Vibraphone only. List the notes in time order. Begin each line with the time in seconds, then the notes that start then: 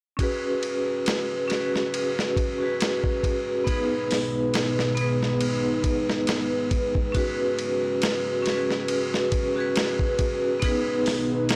0.17 C#4 F#4 G#4
0.23 B4
1.47 C#4 F#4
1.52 G#4 B4
2.58 C#4 F#4
2.63 G#4 B4
3.64 B3 D#4 G#4
3.70 B4
4.95 B3 D#4
4.99 G#4 B4
7.12 C#4 F#4
7.16 G#4 B4
8.43 C#4 F#4
8.47 G#4 B4
9.54 C#4 F#4
9.58 G#4 B4
10.60 B3 D#4
10.64 G#4 B4